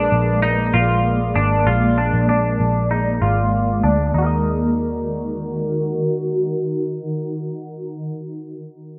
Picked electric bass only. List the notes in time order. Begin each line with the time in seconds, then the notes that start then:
0.12 A#1
0.74 A#1
1.36 G#1
1.67 A#1
2.13 A#1
2.60 A#1
3.22 G#1
3.84 D2
4.14 D#2